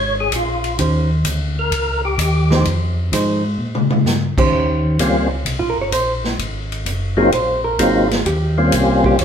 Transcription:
0.00 0.31 G#1 medium
0.00 0.24 G#3 medium
0.00 0.25 D4 medium
0.00 0.25 G4 medium
0.00 0.15 C#5 loud
0.20 0.33 G#4 medium
0.32 0.77 A#1 medium
0.32 0.77 F4 medium
0.32 kick soft
0.32 hi-hat pedal medium
0.32 ride medium
0.64 ride soft
0.78 1.24 D#2 medium
0.78 1.08 D#3 medium
0.78 1.08 C#4 medium
0.78 1.08 G4 medium
0.78 1.08 C5 medium
0.78 kick soft
0.78 ride medium
1.25 1.71 D2 loud
1.25 kick soft
1.25 hi-hat pedal medium
1.25 ride medium
1.59 2.02 A#4 medium
1.71 2.17 C#2 medium
1.71 kick soft
1.71 ride medium
2.05 2.19 G4 medium
2.18 2.64 D#2 loud
2.18 2.64 G4 medium
2.18 kick soft
2.18 hi-hat pedal medium
2.18 ride medium
2.51 2.64 F3 medium
2.51 2.65 D#4 medium
2.51 2.65 G#4 medium
2.51 2.65 C5 medium
2.51 snare medium
2.65 3.11 F2 loud
2.65 kick soft
2.65 ride medium
3.12 3.58 G#2 medium
3.12 3.41 F3 medium
3.12 3.42 D#4 medium
3.12 3.42 G#4 medium
3.12 3.42 C5 medium
3.12 kick soft
3.12 hi-hat pedal medium
3.12 ride medium
3.59 4.04 A#2 medium
3.75 mid tom medium
3.90 mid tom medium
4.05 4.35 G2 loud
4.05 snare medium
4.05 hi-hat pedal medium
4.37 4.45 G2 soft
4.37 4.96 D#3 medium
4.37 4.97 C#4 medium
4.37 4.97 G4 medium
4.37 4.97 C5 loud
4.37 kick medium
4.37 crash medium
4.53 4.98 D#2 medium
4.53 kick soft
4.99 5.44 C#2 medium
4.99 5.28 G3 medium
4.99 5.28 A#3 medium
4.99 5.28 C4 medium
4.99 5.29 C#4 medium
4.99 5.29 F4 medium
4.99 kick soft
4.99 hi-hat pedal medium
4.99 ride medium
5.45 5.61 C2 medium
5.45 kick soft
5.45 ride medium
5.59 5.77 A#1 medium
5.59 5.76 F4 medium
5.70 5.81 A#4 medium
5.76 5.91 G1 medium
5.81 5.90 C#5 medium
5.92 6.37 A#1 loud
5.92 6.12 C5 medium
5.92 kick soft
5.92 hi-hat pedal medium
5.92 ride medium
6.24 snare soft
6.39 6.84 G#1 medium
6.39 kick soft
6.39 ride medium
6.72 ride soft
6.86 7.31 F#1 medium
6.86 kick soft
6.86 hi-hat pedal medium
6.86 ride medium
7.17 7.31 F#3 medium
7.17 7.31 A#3 medium
7.17 7.31 C4 medium
7.17 7.31 D#4 medium
7.17 7.31 F4 medium
7.17 7.32 G#4 medium
7.32 7.78 A#1 medium
7.32 7.64 C5 medium
7.32 kick soft
7.32 ride medium
7.64 7.79 A#4 medium
7.79 8.24 G#1 medium
7.79 8.08 F#3 medium
7.79 8.08 A#3 medium
7.79 8.08 C4 medium
7.79 8.08 D#4 medium
7.79 8.08 F4 medium
7.79 8.23 G#4 medium
7.79 kick soft
7.79 hi-hat pedal medium
7.79 ride medium
8.11 snare medium
8.11 ride soft
8.25 8.71 D#2 medium
8.25 9.01 G4 medium
8.25 kick soft
8.25 ride medium
8.58 9.17 G3 medium
8.58 9.16 A#3 medium
8.58 9.17 C4 medium
8.58 9.17 C#4 medium
8.58 9.16 F4 medium
8.72 9.18 C2 loud
8.72 kick soft
8.72 hi-hat pedal medium
8.72 ride medium
9.04 9.20 G4 medium
9.04 kick medium
9.19 9.25 D#2 medium
9.19 9.25 C#5 medium
9.19 kick soft
9.19 ride medium

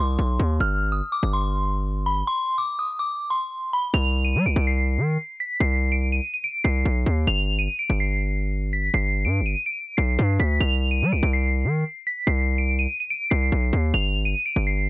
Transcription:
0.00 0.18 C2 loud
0.00 0.56 C6 medium
0.19 0.39 B1 loud
0.40 0.60 D#2 loud
0.60 0.83 G1 loud
0.60 0.90 F6 loud
0.81 0.93 G#1 loud
0.92 1.02 G1 loud
0.92 1.10 D#6 medium
1.12 1.31 D6 medium
1.23 2.23 G1 loud
1.33 2.02 C6 medium
2.06 2.25 B5 medium
2.27 2.57 C6 loud
2.58 2.77 D6 medium
2.79 2.97 D#6 medium
2.99 3.29 D6 medium
3.30 3.70 C6 medium
3.73 3.92 B5 medium
3.94 4.37 C2 loud
3.94 4.23 F7 loud
4.25 4.43 D#7 medium
4.35 4.47 G3 loud
4.46 4.56 C2 loud
4.46 4.64 D7 medium
4.56 4.99 C2 loud
4.67 5.36 C7 medium
4.98 5.18 D#3 loud
5.40 5.58 B6 medium
5.60 6.20 C2 loud
5.60 5.90 C7 medium
5.92 6.10 D7 medium
6.12 6.31 D#7 medium
6.34 6.43 D#7 medium
6.44 6.62 D7 medium
6.64 6.85 C2 loud
6.64 7.23 C7 medium
6.85 7.05 B1 loud
7.06 7.26 D#2 loud
7.27 7.49 G1 loud
7.27 7.57 F7 loud
7.48 7.60 G#1 loud
7.58 7.68 G1 loud
7.58 7.77 D#7 medium
7.79 7.98 D7 medium
7.90 8.90 G1 loud
8.00 8.69 C7 medium
8.73 8.91 B6 medium
8.94 9.27 G1 loud
8.94 9.23 C7 loud
9.25 9.42 G2 loud
9.25 9.43 D7 medium
9.41 9.55 G1 loud
9.46 9.64 D#7 medium
9.66 9.96 D7 medium
9.97 10.18 B1 loud
9.97 10.37 C7 medium
10.19 10.39 G2 loud
10.40 10.60 D2 loud
10.40 10.58 B6 medium
10.60 11.04 C2 loud
10.60 10.90 F7 loud
10.91 11.10 D#7 medium
11.02 11.14 G3 loud
11.12 11.22 C2 loud
11.12 11.31 D7 medium
11.23 11.66 C2 loud
11.33 12.02 C7 medium
11.64 11.84 D#3 loud
12.07 12.25 B6 medium
12.27 12.87 C2 loud
12.27 12.56 C7 loud
12.58 12.77 D7 medium
12.79 12.97 D#7 medium
13.00 13.09 D#7 medium
13.10 13.29 D7 medium
13.30 13.51 C2 loud
13.30 13.90 C7 medium
13.52 13.72 B1 loud
13.73 13.93 D#2 loud
13.94 14.16 G1 loud
13.94 14.23 F7 loud
14.15 14.27 G#1 loud
14.25 14.35 G1 loud
14.25 14.44 D#7 medium
14.46 14.64 D7 medium
14.56 14.89 G1 loud
14.67 14.89 C7 medium

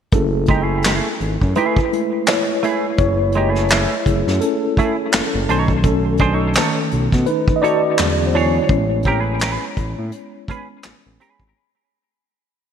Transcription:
0.12 1.00 F#1 loud
0.12 1.16 A3 soft
0.12 1.53 C#4 soft
0.12 1.17 E4 medium
0.12 1.16 G#4 soft
0.12 1.60 A4 medium
0.12 kick loud
0.12 closed hi-hat medium
0.46 0.62 G#3 medium
0.46 0.63 D#4 medium
0.46 kick medium
0.46 closed hi-hat medium
0.50 0.63 G4 medium
0.62 0.82 A3 medium
0.62 0.82 E4 medium
0.62 0.83 G#4 medium
0.82 1.07 A3 medium
0.82 snare medium
0.82 clap medium
0.82 closed hi-hat medium
0.87 1.07 E4 medium
0.87 1.08 G#4 medium
1.20 1.37 G#1 medium
1.20 closed hi-hat soft
1.41 1.54 F#2 medium
1.41 kick medium
1.55 1.78 A3 medium
1.55 1.78 E4 medium
1.55 1.92 E4 medium
1.55 1.79 G#4 medium
1.55 2.29 B4 medium
1.55 closed hi-hat medium
1.77 kick medium
1.93 2.24 G#3 soft
1.93 2.24 A3 soft
1.93 2.25 E4 soft
1.93 closed hi-hat medium
2.26 2.96 E4 medium
2.26 2.97 C#5 medium
2.26 muted clean electric guitar stroke soft
2.26 snare loud
2.26 clap medium
2.26 closed hi-hat medium
2.63 2.85 A3 medium
2.63 2.85 E4 medium
2.63 2.86 G#4 medium
2.63 closed hi-hat medium
2.98 3.86 F#1 loud
2.98 4.06 E4 medium
2.98 4.45 C#5 medium
2.98 kick loud
2.98 closed hi-hat medium
3.32 3.48 G#3 medium
3.32 closed hi-hat soft
3.37 3.50 D#4 medium
3.37 3.51 G4 medium
3.48 3.68 A3 medium
3.48 3.68 E4 medium
3.48 3.69 G#4 medium
3.55 snare soft
3.69 3.93 A3 medium
3.69 snare loud
3.69 clap medium
3.69 closed hi-hat medium
3.73 3.93 E4 medium
3.73 3.94 G#4 medium
4.06 4.23 F#1 medium
4.06 5.45 A3 soft
4.06 5.45 E4 medium
4.06 5.44 G#4 soft
4.06 kick medium
4.06 closed hi-hat medium
4.27 4.40 F#2 medium
4.27 snare soft
4.41 5.09 C#4 medium
4.41 5.11 A4 medium
4.41 closed hi-hat medium
4.77 4.95 A3 medium
4.77 4.95 E4 medium
4.77 4.96 G#4 medium
4.77 kick medium
4.77 closed hi-hat medium
5.12 5.21 F#1 soft
5.12 5.48 C#4 medium
5.12 5.64 A4 medium
5.12 muted clean electric guitar stroke soft
5.12 snare loud
5.12 clap medium
5.12 closed hi-hat medium
5.34 5.47 F#1 medium
5.48 6.58 B1 medium
5.48 5.98 D#3 soft
5.48 5.98 A3 soft
5.48 5.85 C#4 soft
5.48 5.71 D#4 medium
5.48 5.71 A4 medium
5.48 5.72 C#5 medium
5.48 closed hi-hat medium
5.68 kick medium
5.83 6.56 C#4 medium
5.83 7.31 A4 medium
5.83 kick loud
5.83 closed hi-hat medium
6.17 6.34 D4 medium
6.17 6.35 G#4 medium
6.17 6.34 C5 medium
6.17 kick medium
6.17 closed hi-hat medium
6.34 6.53 D#4 medium
6.34 6.53 A4 medium
6.34 6.54 C#5 medium
6.54 6.88 D#3 soft
6.54 6.88 A3 soft
6.54 6.89 C#4 soft
6.54 6.78 D#4 medium
6.54 6.78 A4 medium
6.54 snare loud
6.54 clap medium
6.54 closed hi-hat medium
6.58 6.78 C#5 medium
6.91 7.09 B1 medium
6.91 closed hi-hat medium
7.12 7.26 B2 medium
7.12 kick medium
7.12 snare soft
7.26 7.55 D#4 medium
7.26 7.54 B4 medium
7.26 closed hi-hat medium
7.48 kick medium
7.56 7.62 D#5 medium
7.62 7.80 D#4 medium
7.62 8.24 F#4 medium
7.62 7.81 A4 medium
7.62 7.81 C#5 medium
7.62 8.29 D5 loud
7.62 closed hi-hat medium
7.98 8.60 E2 medium
7.98 8.66 D3 soft
7.98 8.66 F#3 soft
7.98 8.67 G#3 soft
7.98 8.67 C#4 medium
7.98 muted clean electric guitar stroke soft
7.98 snare loud
7.98 clap medium
8.27 8.33 C5 medium
8.34 8.56 D4 medium
8.34 10.81 E4 medium
8.34 8.57 G#4 medium
8.34 10.80 C#5 medium
8.34 8.57 C#5 medium
8.34 open hi-hat soft
8.69 9.57 A1 medium
8.69 9.73 G#3 soft
8.69 9.73 B3 soft
8.69 9.73 C#4 medium
8.69 kick loud
8.69 closed hi-hat medium
9.03 9.20 C4 medium
9.03 kick medium
9.03 closed hi-hat medium
9.07 9.20 G4 medium
9.07 9.21 A#4 medium
9.20 9.39 C#4 medium
9.20 9.39 G#4 medium
9.20 9.40 B4 medium
9.39 9.63 C#4 medium
9.39 9.64 G#4 medium
9.39 snare loud
9.39 clap medium
9.39 closed hi-hat medium
9.43 9.64 B4 medium
9.77 9.95 A1 medium
9.77 kick medium
9.77 closed hi-hat medium
9.98 10.11 A2 medium
10.12 closed hi-hat medium
10.48 10.81 G#3 soft
10.48 10.81 B3 soft
10.48 10.81 C#4 soft
10.48 10.66 C#4 medium
10.48 10.67 G#4 medium
10.48 10.67 B4 medium
10.48 kick medium
10.48 closed hi-hat medium
10.83 10.93 A1 soft
10.83 muted clean electric guitar stroke soft
10.83 snare loud
10.83 clap medium
10.83 closed hi-hat medium
11.06 11.18 A1 medium
11.20 11.42 C#4 medium
11.20 11.42 G#4 medium
11.20 11.43 B4 medium
11.20 closed hi-hat medium
11.40 11.53 G#1 medium
11.40 kick medium

